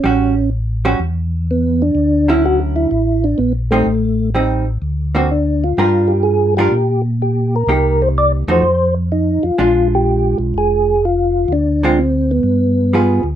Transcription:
Already playing: tonewheel organ C#4
0.04 tonewheel organ A1, hollow-body jazz guitar G3 C#4 F#4
0.85 hollow-body jazz guitar G3 C#4 F#4
1.00 tonewheel organ E2
1.51 tonewheel organ B3
1.82 tonewheel organ D4
1.95 tonewheel organ D2
2.28 hollow-body jazz guitar D3 F#3 C#4 E4, tonewheel organ E4
2.46 tonewheel organ F#4
2.76 tonewheel organ E4
2.91 tonewheel organ A1
3.24 tonewheel organ D4
3.38 tonewheel organ A#1 B3
3.71 hollow-body jazz guitar G3 C4 D#4, tonewheel organ A3
3.86 tonewheel organ A1
4.35 hollow-body jazz guitar G3 C4 D#4
4.82 tonewheel organ D2
5.15 hollow-body jazz guitar D3 A#3 C4 F#4
5.31 tonewheel organ D4
5.64 tonewheel organ F4
5.77 tonewheel organ G2, hollow-body jazz guitar G3 D4 F4 A#4
6.08 tonewheel organ G4
6.23 tonewheel organ G#4
6.57 hollow-body jazz guitar G3 D4 F4 A#4, tonewheel organ G4
6.71 tonewheel organ A#2
7.22 tonewheel organ G4
7.56 tonewheel organ A#4
7.67 tonewheel organ C2, hollow-body jazz guitar A#3 D#4 G4
8.02 tonewheel organ C5
8.18 tonewheel organ D5
8.48 tonewheel organ E2 C5, hollow-body jazz guitar F3 A3 D#4 F#4
8.62 tonewheel organ F2
9.12 tonewheel organ D#4
9.43 tonewheel organ F2 F4
9.58 tonewheel organ A#1, hollow-body jazz guitar G#3 D4 F4
9.95 tonewheel organ G4
10.38 tonewheel organ B1
10.54 tonewheel organ F1 G#4
11.05 tonewheel organ F4
11.48 tonewheel organ D2
11.52 tonewheel organ D4
11.83 hollow-body jazz guitar D3 G#3 C4 F4
11.99 tonewheel organ C4
12.31 tonewheel organ B3
12.43 tonewheel organ G2
12.93 hollow-body jazz guitar G3 B3 F4 G#4
13.23 tonewheel organ D2

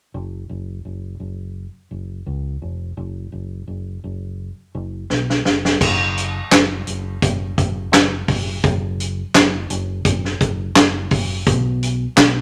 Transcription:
0.14 fingered electric bass F#1
0.49 fingered electric bass F#1
0.85 fingered electric bass F#1
1.20 fingered electric bass F#1
1.91 fingered electric bass F#1
2.26 fingered electric bass C#2
2.62 fingered electric bass F1
2.97 fingered electric bass F#1
3.32 fingered electric bass F#1
3.67 fingered electric bass F#1
4.04 fingered electric bass F#1
4.75 fingered electric bass F#1
5.10 fingered electric bass B1, snare
5.30 snare
5.45 fingered electric bass F#1, snare
5.65 snare
5.81 fingered electric bass F#1, kick, crash
6.18 closed hi-hat
6.51 fingered electric bass F#1, snare, clap, closed hi-hat
6.87 fingered electric bass F#1, closed hi-hat
7.22 fingered electric bass F#1, kick, closed hi-hat
7.58 fingered electric bass F#1, kick, closed hi-hat
7.92 fingered electric bass F#1, snare, clap, closed hi-hat
8.28 fingered electric bass F#1, kick, open hi-hat
8.64 fingered electric bass F#1, kick, closed hi-hat
9.00 closed hi-hat
9.34 fingered electric bass F#1, snare, clap, closed hi-hat
9.70 fingered electric bass F#1, closed hi-hat
10.05 fingered electric bass F#1, kick, closed hi-hat
10.25 snare
10.41 fingered electric bass F#1, kick, closed hi-hat
10.76 fingered electric bass F#1, snare, clap, closed hi-hat
11.11 fingered electric bass F#1, kick, open hi-hat
11.47 fingered electric bass B1, kick, closed hi-hat
11.83 closed hi-hat
12.16 fingered electric bass B1, snare, clap, closed hi-hat

